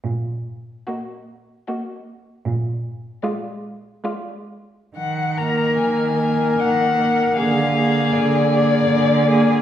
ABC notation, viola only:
X:1
M:3/4
L:1/8
Q:1/4=76
K:Ebm
V:1 name="Viola"
z2 B,2 B,2 | z2 A,2 A,2 | z B,2 B,2 B, | B, B,2 B,2 B, |]